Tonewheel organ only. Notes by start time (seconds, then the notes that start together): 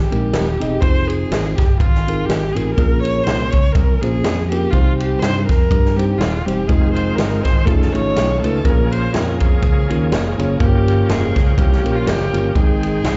6.68 D#3 G#3 C4 F4
7.68 A3 C#4
8.65 F3 A#3 G#4
10.61 A#3 G5
12.56 D#3 G#3 C4 G5